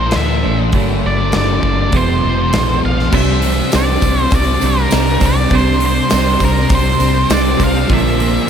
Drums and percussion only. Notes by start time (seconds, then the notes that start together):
0.11 snare, open hi-hat
0.72 kick, open hi-hat
1.32 snare, open hi-hat
1.63 kick
1.92 kick, open hi-hat
2.53 snare, open hi-hat
2.99 snare
3.12 kick, crash, tambourine
3.42 open hi-hat, tambourine
3.72 snare, open hi-hat, tambourine
4.01 kick, open hi-hat, tambourine
4.31 kick, open hi-hat, tambourine
4.61 open hi-hat, tambourine
4.91 snare, open hi-hat, tambourine
5.20 kick, open hi-hat, tambourine
5.50 kick, open hi-hat, tambourine
5.80 open hi-hat, tambourine
6.10 snare, open hi-hat, tambourine
6.40 kick, open hi-hat, tambourine
6.69 kick, open hi-hat, tambourine
7.00 open hi-hat, tambourine
7.30 snare, open hi-hat, tambourine
7.60 kick, open hi-hat, tambourine
7.90 kick, open hi-hat, tambourine
8.19 open hi-hat, tambourine